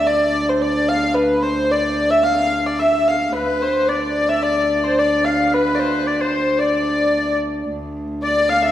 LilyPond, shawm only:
\new Staff \with { instrumentName = "Shawm" } { \time 2/4 \key d \dorian \tempo 4 = 110 r2 | r2 | r2 | b'4 d''4 |
d''4 d''8 f''8 | b'4 d''16 c''8. | d''4. r8 | r4 d''8 f''8 | }